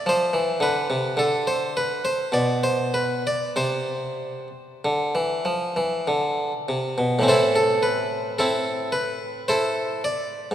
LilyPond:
<<
  \new Staff \with { instrumentName = "Harpsichord" } { \time 3/4 \key c \major \tempo 4 = 52 c''8 b'8 a'16 c''16 b'16 c''16 d''16 c''16 b'16 d''16 | c''2 r4 | \key a \minor <e' a' c''>16 a'16 b'8 <c' e' a'>8 b'8 <e' a' c''>8 d''8 | }
  \new Staff \with { instrumentName = "Harpsichord" } { \clef bass \time 3/4 \key c \major f16 e16 d16 c16 d4 b,4 | c4 d16 e16 f16 e16 d8 c16 b,16 | \key a \minor <a, e c'>2. | }
>>